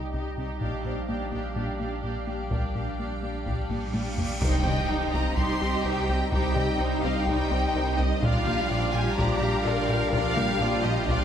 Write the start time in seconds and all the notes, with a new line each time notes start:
Already playing: C2 G3 A#3 D#4 G4 A#4 D#5
0.13 C2 C3 D#4 G4 D#5
0.37 C3 D#4 G4 D#5
0.61 A#1 A#2 G3 D4 G4 F5, taiko
0.84 A#2 D4 G4 C5 F5
1.08 A#2 A#3 D4 G4 F5
1.32 A#2 A#3 D4 G4 F5, taiko
1.56 A#2 D4 G4 F5
1.79 A#2 A#3 D4 G4 F5
2.03 A#2 D4 G4 F5
2.27 A#2 A#3 D4 G4 F5
2.50 A#2 D4 G4 A#4 F5, taiko, cymbal swell
2.74 A#2 D4 G4 F5
2.98 A#2 A#3 D4 G4 F5
3.22 A#2 A#3 D4 G4 F5
3.46 A#2 D4 G4 F5, taiko
3.70 A#2 A#3 D4 G4 F5, taiko low-mid
3.93 A#2 D4 G4 F5, taiko high
4.17 A#2 A#3 D4 G4 F5, taiko low
4.41 C2 G3 D#4 G4 C5 G5, taiko, impact
4.65 C3 C4 G4 D#5, taiko mid
4.89 C2 G3 D#4 C5
5.13 C2 G3 C4 G4 D#5 A#5
5.36 C2 G3 D#4 G4 C5 C6, taiko
5.61 C2 C4 G4 D#5
5.84 C2 G3 D#4 C5 G5
6.09 C2 C4 G4 D#5
6.32 C2 G3 D#4 G4 C5 G5, taiko
6.56 C3 C4 G4 D#5, taiko mid
6.80 C2 G3 D#4 C5
7.03 C2 C4 G4 D#5 F5
7.27 C2 G3 D#4 C5 G5, taiko
7.52 C2 C4 G4 D#5
7.75 C2 G3 D#4 A#4 C5
7.98 C2 C4 G4 D#5
8.21 A#1 A#2 F3 G3 D4 F4 G4 D5 F5 G5, taiko
8.46 G3 A#3 F4 G4 F5, taiko mid
8.69 A#1 A#2 F3 D4 F4 D5
8.93 A#2 G3 F4 G4 F5 G#5
9.17 A#1 A#2 F3 D4 F4 G4 D5 A#5, taiko
9.41 A#2 G3 F4 G4 F5
9.65 A#1 A#2 F3 D4 F4 A#4 D5 F5
9.89 A#2 G3 F4 G4 F5
10.12 A#1 A#2 F3 D4 F4 D5 F5, taiko
10.36 G3 A#3 F4 G4 F5, taiko mid
10.60 A#1 A#2 F3 A#3 D4 F4 A#4 D5
10.84 A#2 G3 F4 G4 D#5 F5
11.08 A#1 A#2 F3 D4 F4 D5 F5, taiko